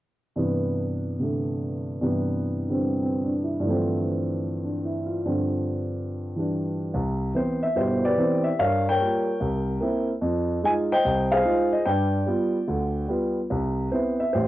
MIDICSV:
0, 0, Header, 1, 2, 480
1, 0, Start_track
1, 0, Key_signature, 0, "major"
1, 0, Tempo, 414365
1, 427, Time_signature, 4, 2, 24, 8
1, 2346, Tempo, 406229
1, 6666, Tempo, 419874
1, 8586, Tempo, 408998
1, 14346, Tempo, 416956
1, 16889, End_track
2, 0, Start_track
2, 0, Title_t, "Grand piano"
2, 0, Program_c, 0, 0
2, 411, Note_on_c, 0, 43, 42
2, 421, Note_on_c, 0, 48, 38
2, 429, Note_on_c, 0, 52, 40
2, 432, Note_on_c, 0, 59, 45
2, 1365, Note_off_c, 0, 48, 0
2, 1383, Note_on_c, 0, 48, 34
2, 1393, Note_on_c, 0, 50, 31
2, 1417, Note_on_c, 0, 57, 36
2, 2311, Note_off_c, 0, 43, 0
2, 2321, Note_off_c, 0, 48, 0
2, 2325, Note_off_c, 0, 52, 0
2, 2328, Note_on_c, 0, 43, 49
2, 2334, Note_off_c, 0, 59, 0
2, 2339, Note_on_c, 0, 48, 45
2, 2343, Note_on_c, 0, 52, 42
2, 2346, Note_off_c, 0, 50, 0
2, 2352, Note_on_c, 0, 59, 51
2, 2359, Note_off_c, 0, 57, 0
2, 3123, Note_on_c, 0, 50, 35
2, 3140, Note_on_c, 0, 55, 32
2, 3163, Note_on_c, 0, 60, 41
2, 3512, Note_off_c, 0, 60, 0
2, 3529, Note_on_c, 0, 60, 36
2, 3778, Note_on_c, 0, 62, 41
2, 3872, Note_off_c, 0, 60, 0
2, 4011, Note_on_c, 0, 64, 38
2, 4156, Note_off_c, 0, 62, 0
2, 4187, Note_off_c, 0, 43, 0
2, 4205, Note_on_c, 0, 43, 47
2, 4218, Note_off_c, 0, 50, 0
2, 4236, Note_on_c, 0, 50, 43
2, 4239, Note_off_c, 0, 52, 0
2, 4257, Note_on_c, 0, 52, 42
2, 4261, Note_off_c, 0, 55, 0
2, 4263, Note_off_c, 0, 48, 0
2, 4269, Note_off_c, 0, 59, 0
2, 4283, Note_on_c, 0, 53, 44
2, 4302, Note_on_c, 0, 57, 41
2, 4330, Note_on_c, 0, 60, 52
2, 4353, Note_off_c, 0, 64, 0
2, 5436, Note_on_c, 0, 62, 37
2, 5681, Note_on_c, 0, 64, 43
2, 5781, Note_off_c, 0, 62, 0
2, 5926, Note_on_c, 0, 65, 40
2, 6064, Note_off_c, 0, 64, 0
2, 6140, Note_off_c, 0, 43, 0
2, 6145, Note_off_c, 0, 50, 0
2, 6151, Note_off_c, 0, 53, 0
2, 6157, Note_on_c, 0, 43, 45
2, 6162, Note_off_c, 0, 60, 0
2, 6163, Note_on_c, 0, 50, 41
2, 6169, Note_on_c, 0, 53, 40
2, 6176, Note_off_c, 0, 52, 0
2, 6180, Note_on_c, 0, 60, 47
2, 6198, Note_off_c, 0, 57, 0
2, 6270, Note_off_c, 0, 65, 0
2, 7442, Note_on_c, 0, 52, 38
2, 7462, Note_on_c, 0, 55, 31
2, 7479, Note_on_c, 0, 62, 40
2, 8099, Note_off_c, 0, 43, 0
2, 8099, Note_off_c, 0, 52, 0
2, 8102, Note_off_c, 0, 50, 0
2, 8105, Note_off_c, 0, 53, 0
2, 8106, Note_on_c, 0, 36, 58
2, 8110, Note_off_c, 0, 55, 0
2, 8110, Note_off_c, 0, 60, 0
2, 8118, Note_off_c, 0, 62, 0
2, 8522, Note_off_c, 0, 36, 0
2, 8569, Note_on_c, 0, 52, 44
2, 8570, Note_on_c, 0, 59, 44
2, 8577, Note_on_c, 0, 60, 49
2, 8591, Note_on_c, 0, 72, 64
2, 8901, Note_on_c, 0, 76, 71
2, 8918, Note_off_c, 0, 52, 0
2, 8918, Note_off_c, 0, 59, 0
2, 8922, Note_off_c, 0, 60, 0
2, 8923, Note_off_c, 0, 72, 0
2, 9051, Note_on_c, 0, 31, 58
2, 9052, Note_off_c, 0, 76, 0
2, 9052, Note_on_c, 0, 47, 58
2, 9064, Note_on_c, 0, 72, 67
2, 9067, Note_on_c, 0, 64, 50
2, 9067, Note_on_c, 0, 67, 51
2, 9382, Note_off_c, 0, 67, 0
2, 9393, Note_on_c, 0, 71, 55
2, 9393, Note_on_c, 0, 74, 86
2, 9400, Note_on_c, 0, 67, 53
2, 9402, Note_off_c, 0, 72, 0
2, 9480, Note_off_c, 0, 31, 0
2, 9481, Note_off_c, 0, 47, 0
2, 9541, Note_on_c, 0, 52, 49
2, 9545, Note_on_c, 0, 59, 46
2, 9552, Note_on_c, 0, 60, 57
2, 9851, Note_on_c, 0, 76, 76
2, 9889, Note_off_c, 0, 52, 0
2, 9890, Note_off_c, 0, 59, 0
2, 9892, Note_off_c, 0, 74, 0
2, 9894, Note_off_c, 0, 60, 0
2, 9988, Note_off_c, 0, 64, 0
2, 9990, Note_off_c, 0, 71, 0
2, 9994, Note_off_c, 0, 67, 0
2, 10027, Note_off_c, 0, 76, 0
2, 10028, Note_on_c, 0, 43, 60
2, 10032, Note_on_c, 0, 77, 81
2, 10044, Note_on_c, 0, 73, 58
2, 10052, Note_on_c, 0, 70, 54
2, 10336, Note_off_c, 0, 77, 0
2, 10370, Note_off_c, 0, 73, 0
2, 10377, Note_on_c, 0, 79, 83
2, 10380, Note_off_c, 0, 70, 0
2, 10388, Note_on_c, 0, 73, 61
2, 10398, Note_on_c, 0, 70, 61
2, 10452, Note_off_c, 0, 43, 0
2, 10503, Note_on_c, 0, 55, 48
2, 10514, Note_on_c, 0, 58, 46
2, 10524, Note_on_c, 0, 65, 53
2, 10852, Note_off_c, 0, 55, 0
2, 10857, Note_off_c, 0, 58, 0
2, 10862, Note_off_c, 0, 65, 0
2, 10970, Note_off_c, 0, 73, 0
2, 10982, Note_on_c, 0, 36, 60
2, 11402, Note_off_c, 0, 36, 0
2, 11456, Note_on_c, 0, 58, 52
2, 11468, Note_on_c, 0, 60, 47
2, 11474, Note_on_c, 0, 64, 55
2, 11753, Note_off_c, 0, 79, 0
2, 11763, Note_off_c, 0, 70, 0
2, 11799, Note_off_c, 0, 58, 0
2, 11805, Note_off_c, 0, 60, 0
2, 11808, Note_off_c, 0, 64, 0
2, 11935, Note_on_c, 0, 41, 67
2, 12357, Note_off_c, 0, 41, 0
2, 12424, Note_on_c, 0, 56, 54
2, 12432, Note_on_c, 0, 63, 43
2, 12438, Note_on_c, 0, 65, 57
2, 12450, Note_on_c, 0, 80, 92
2, 12520, Note_off_c, 0, 80, 0
2, 12763, Note_off_c, 0, 56, 0
2, 12766, Note_on_c, 0, 75, 69
2, 12767, Note_off_c, 0, 63, 0
2, 12767, Note_on_c, 0, 72, 68
2, 12767, Note_on_c, 0, 79, 93
2, 12771, Note_off_c, 0, 65, 0
2, 12911, Note_on_c, 0, 36, 63
2, 13227, Note_off_c, 0, 72, 0
2, 13229, Note_on_c, 0, 77, 85
2, 13234, Note_on_c, 0, 68, 64
2, 13245, Note_on_c, 0, 72, 62
2, 13251, Note_off_c, 0, 79, 0
2, 13324, Note_off_c, 0, 36, 0
2, 13383, Note_on_c, 0, 56, 53
2, 13390, Note_on_c, 0, 63, 49
2, 13395, Note_on_c, 0, 65, 63
2, 13668, Note_off_c, 0, 75, 0
2, 13673, Note_off_c, 0, 77, 0
2, 13709, Note_on_c, 0, 75, 74
2, 13721, Note_off_c, 0, 56, 0
2, 13725, Note_off_c, 0, 63, 0
2, 13728, Note_off_c, 0, 65, 0
2, 13821, Note_off_c, 0, 68, 0
2, 13827, Note_off_c, 0, 72, 0
2, 13862, Note_on_c, 0, 79, 78
2, 13867, Note_on_c, 0, 43, 66
2, 13869, Note_off_c, 0, 75, 0
2, 13879, Note_on_c, 0, 71, 52
2, 13885, Note_on_c, 0, 74, 54
2, 14284, Note_off_c, 0, 43, 0
2, 14342, Note_on_c, 0, 55, 50
2, 14352, Note_on_c, 0, 59, 45
2, 14352, Note_on_c, 0, 65, 52
2, 14680, Note_off_c, 0, 55, 0
2, 14685, Note_off_c, 0, 59, 0
2, 14685, Note_off_c, 0, 65, 0
2, 14814, Note_on_c, 0, 50, 60
2, 14817, Note_on_c, 0, 38, 59
2, 15234, Note_off_c, 0, 50, 0
2, 15235, Note_off_c, 0, 38, 0
2, 15254, Note_off_c, 0, 79, 0
2, 15262, Note_off_c, 0, 71, 0
2, 15265, Note_off_c, 0, 74, 0
2, 15283, Note_on_c, 0, 55, 49
2, 15296, Note_on_c, 0, 59, 45
2, 15297, Note_on_c, 0, 65, 52
2, 15630, Note_off_c, 0, 55, 0
2, 15636, Note_off_c, 0, 59, 0
2, 15637, Note_off_c, 0, 65, 0
2, 15766, Note_on_c, 0, 36, 63
2, 16188, Note_off_c, 0, 36, 0
2, 16243, Note_on_c, 0, 72, 64
2, 16253, Note_on_c, 0, 60, 41
2, 16261, Note_on_c, 0, 59, 48
2, 16262, Note_on_c, 0, 64, 51
2, 16553, Note_off_c, 0, 72, 0
2, 16568, Note_on_c, 0, 76, 70
2, 16597, Note_off_c, 0, 60, 0
2, 16601, Note_off_c, 0, 59, 0
2, 16602, Note_off_c, 0, 64, 0
2, 16719, Note_on_c, 0, 72, 70
2, 16722, Note_on_c, 0, 64, 48
2, 16732, Note_on_c, 0, 67, 51
2, 16740, Note_off_c, 0, 76, 0
2, 16740, Note_on_c, 0, 33, 63
2, 16889, Note_off_c, 0, 33, 0
2, 16889, Note_off_c, 0, 64, 0
2, 16889, Note_off_c, 0, 67, 0
2, 16889, Note_off_c, 0, 72, 0
2, 16889, End_track
0, 0, End_of_file